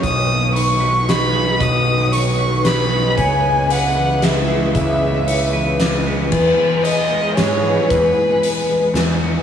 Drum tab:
CC |------|------|------|------|
HH |x-x-x-|x-x-x-|x-x-x-|x-x-x-|
SD |----o-|----o-|----o-|----o-|
BD |o-----|o-----|o-----|o-----|

CC |x-----|------|
HH |--x-x-|x-x-x-|
SD |----o-|----o-|
BD |o-----|o-----|